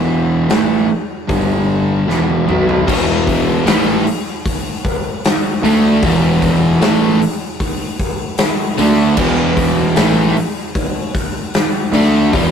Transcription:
Already playing: E1 E2 B2 E3
0.49 A1 A2 E3 A3, snare, open hi-hat
1.28 G1 G2 D3 G3, kick, open hi-hat
2.07 E1 E2 B2 E3, snare
2.30 high tom
2.47 B1 B2 F#3 B3, mid tom
2.69 floor tom
2.87 E1 E2 B2 E3, kick, crash
3.27 kick, open hi-hat
3.66 A1 A2 E3 A3, snare, open hi-hat
4.07 open hi-hat
4.46 kick, open hi-hat
4.85 kick, open hi-hat
5.24 snare, open hi-hat
5.62 D2 D3 A3 D4, open hi-hat
6.02 E1 E2 B2 E3, kick, open hi-hat
6.42 kick, open hi-hat
6.79 A1 A2 E3 A3, snare, open hi-hat
7.22 open hi-hat
7.60 kick, open hi-hat
7.99 kick, open hi-hat
8.38 snare, open hi-hat
8.77 D2 D3 A3 D4, open hi-hat
9.17 E1 E2 B2 E3, kick, crash
9.57 kick, open hi-hat
9.96 A1 A2 E3 A3, snare, open hi-hat
10.37 open hi-hat
10.75 kick, open hi-hat
11.15 kick, open hi-hat
11.54 snare, open hi-hat
11.92 D2 D3 A3 D4, open hi-hat
12.32 E1 E2 B2 E3, kick, open hi-hat

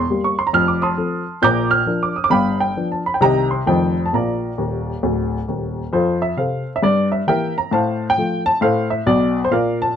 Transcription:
Already playing: C6
0.10 G3 A#3 G4
0.24 C#6
0.39 C6
0.47 A#5
0.53 F1 F2 F6
0.68 D6
0.82 A5 C6 D#6
0.97 F3 C4 A4
1.42 A#1 A#2 A#5 D6 G6
1.71 F6
1.86 F3 D4 A#4
2.03 D6
2.16 D#6
2.24 D6
2.30 G1 G2 F5 G5 B5
2.60 G5
2.77 F3 D4 B4
2.92 A5
3.06 B5
3.14 G5
3.21 C2 C3 D#3 C4 G4 D#5 G5 A#5
3.51 C6
3.66 F1 F2 D#3 C4 A4 C5 D#5 G5
4.06 A5
4.13 A#1 A#2 D5 F5 A#5
4.58 D#1 D#2
5.03 D1 D2
5.48 D#1 D#2
5.93 F2 F4 A4 C5
6.22 E5
6.37 C3 C4 A4 C5 F5
6.76 E5
6.83 G2 D5
7.12 E5
7.27 E3 A#3 G4 A#4 E5 G5
7.58 A#5
7.71 A2 C5 F5 A5
8.10 G5
8.17 F3 A3 F4
8.46 A5
8.61 A2 A4 C5 F5
8.90 E5
9.06 B1 B2 D5
9.45 C5
9.51 A#2 A#4 D5 F5
9.82 A5

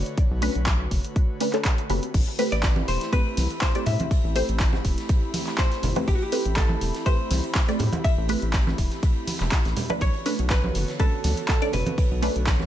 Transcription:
Already playing: D3 A3 F#4 B4 C#5
0.06 closed hi-hat
0.17 kick, closed hi-hat
0.31 B1
0.42 A3 C#4 D4 B4, open hi-hat
0.55 B1, closed hi-hat
0.66 kick, clap, closed hi-hat
0.91 F#1, kick, open hi-hat
1.04 closed hi-hat
1.16 kick, closed hi-hat
1.40 A3 C#4 D4 B4, open hi-hat
1.53 A3 C#4 D4 A4, clap, closed hi-hat
1.65 kick, clap, closed hi-hat
1.78 closed hi-hat
1.90 F#1 A3 C4 G4 B4, open hi-hat
2.03 closed hi-hat
2.14 A1 A3 C4 E4 G4 B5, kick, closed hi-hat, crash
2.27 closed hi-hat
2.39 A3 C4 G4 B4, closed hi-hat, open hi-hat
2.52 A1 D5, closed hi-hat
2.63 kick, snare, clap, closed hi-hat
2.76 high conga
2.88 E1 C5, closed hi-hat, open hi-hat
3.01 snare, closed hi-hat
3.12 A3 C4 G4 B4, kick, closed hi-hat
3.37 C2, snare, closed hi-hat, open hi-hat, high conga
3.50 closed hi-hat
3.61 C5, kick, snare, clap, closed hi-hat
3.75 A3 C4 G4 D5, closed hi-hat
3.86 A2 E5, closed hi-hat, open hi-hat, low conga
4.00 closed hi-hat, high conga
4.11 kick, closed hi-hat
4.24 A1
4.35 A3 C4 G4 C5, closed hi-hat, open hi-hat
4.49 A1, closed hi-hat
4.60 kick, snare, clap, closed hi-hat
4.73 snare, high conga
4.85 E1, kick, closed hi-hat, open hi-hat
4.98 snare, closed hi-hat
5.09 kick, closed hi-hat
5.34 open hi-hat, high conga
5.47 snare, clap, closed hi-hat
5.58 C5, kick, snare, clap, closed hi-hat
5.72 snare, closed hi-hat
5.83 G1, closed hi-hat, open hi-hat, low conga
5.96 A3 C4 G4 B4, closed hi-hat, high conga
6.08 A1 G4, kick, closed hi-hat
6.15 F#4
6.21 G4, closed hi-hat
6.32 A3 C4 G4 B4, closed hi-hat, open hi-hat
6.45 A1, closed hi-hat
6.56 A4, kick, snare, clap, closed hi-hat
6.69 high conga
6.81 E1, closed hi-hat, open hi-hat
6.94 snare, closed hi-hat
7.06 A3 C4 G4 B4 C5, kick, closed hi-hat
7.31 C2, snare, closed hi-hat, open hi-hat, high conga
7.44 closed hi-hat
7.55 kick, snare, clap, closed hi-hat
7.68 A3 C4 G4 D5, closed hi-hat
7.79 A2, closed hi-hat, open hi-hat, low conga
7.93 closed hi-hat, high conga
8.04 E5, kick, closed hi-hat
8.18 A1
8.29 A3 C4 G4 B4, closed hi-hat, open hi-hat
8.42 A1, closed hi-hat
8.53 kick, snare, clap, closed hi-hat
8.67 snare, high conga
8.78 E1, kick, closed hi-hat, open hi-hat
8.90 snare, closed hi-hat
9.03 kick, closed hi-hat
9.27 open hi-hat, high conga
9.40 E1, snare, clap, closed hi-hat
9.52 kick, snare, clap, closed hi-hat
9.65 A1, snare, closed hi-hat
9.77 closed hi-hat, open hi-hat, low conga
9.90 A3 C#4 D4 B4, closed hi-hat, high conga
10.01 B1 D3 B3 F#4 A4 C#5, kick, closed hi-hat
10.14 closed hi-hat
10.26 A3 C#4 D4 B4, closed hi-hat, open hi-hat
10.39 B1, closed hi-hat
10.50 B4, kick, snare, clap, closed hi-hat
10.64 high conga
10.75 F#1, closed hi-hat, open hi-hat
10.88 snare, closed hi-hat
10.99 A3 C#4 D4 A4 B4, kick, closed hi-hat
11.24 D2, snare, closed hi-hat, open hi-hat, high conga
11.37 closed hi-hat
11.48 A4, kick, snare, clap, closed hi-hat
11.62 A3 C#4 D4 D5, closed hi-hat
11.73 F#1 B4, closed hi-hat, open hi-hat, low conga
11.86 closed hi-hat, high conga
11.98 kick, closed hi-hat
12.11 B1
12.22 A3 C#4 D4 B4, closed hi-hat, open hi-hat
12.36 B1, closed hi-hat
12.47 kick, snare, clap, closed hi-hat
12.60 snare, high conga

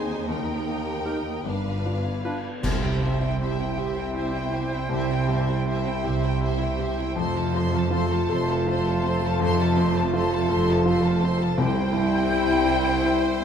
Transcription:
Already playing: D#2 D#3 C4 D#4 G#4 C5 D#5 G#5 C6
0.09 D#4
0.28 D#2 D#3 A#3 G4 A#4 G5
0.49 A#3
0.67 A#3 D#4 G4
0.87 G4
1.05 A#3 D#4 G4 A#4 G5
1.26 D#5
1.45 G1 G2 B3 D4 F4 B4 F5
1.65 D3
1.85 B3 D4 F4
2.04 D4
2.24 B3 D4 F4 B4 F5
2.44 B4
2.62 C2 C3 G3 E4 G4 C5 E5 G5, concert bass drum, crash
2.83 E4 E5 G5
3.01 G2 G3 G4 C5 E5
3.20 E4 E5 G5
3.39 C4 E4 G4 C5 E5
3.58 E4 E5 G5
3.77 C2 C3 E4 G4 C5 E5
3.97 E4 E5 G5
4.14 E4 G4 C5 E5
4.34 E4 E5 G5
4.52 C4 E4 G4 C5 E5
4.72 E4 E5 G5
4.89 C2 C3 G4 C5
4.94 E5
5.09 E4 E5 G5
5.28 G2 G3 G4 C5 E5
5.47 E4 E5 G5
5.65 C4 E4 G4 C5 E5
5.85 E4 E5 G5
6.03 C2 C3 E4 G4 C5 E5
6.22 E4 E5 G5
6.41 E4 G4 C5 E5
6.59 E4 E5 G5
6.78 C4 E4 G4 C5 E5
6.98 E4 E5 G5
7.15 F1 F2 F3 A3 F4 A4 C5 A5
7.19 C6
7.34 F4 A4 A5
7.53 C3 C4 A4 C5 C6
7.72 F4 A4 A5
7.90 F4 A4 C5
7.94 C6
8.10 F4 A4 A5
8.29 F1 F2 A4 C5 C6
8.49 F4 A4 A5
8.66 F4 A4 C5
8.71 C6
8.86 F4 A4 A5
9.03 C4 A4 C5 C6
9.23 F4 A4 A5
9.40 F1 F2 F3 A4 C5 C6
9.60 F4 A4 A5
9.76 C3 C4 A4 C5 C6
9.95 F4 A4 A5
10.13 F4 A4 C5 C6
10.32 F4 A4 A5
10.49 F1 F2 A4 C5 C6
10.67 F4 A4 A5
10.85 F4 A4 C5 C6
11.03 F4 A4 A5
11.20 C4 A4 C5 C6
11.39 F4 A4 A5
11.55 C2 C3 G3 E4 C5 G5
11.93 G2 G3
12.29 C4 E4
12.65 E4 G4
13.02 E4 G4
13.39 C4 E4

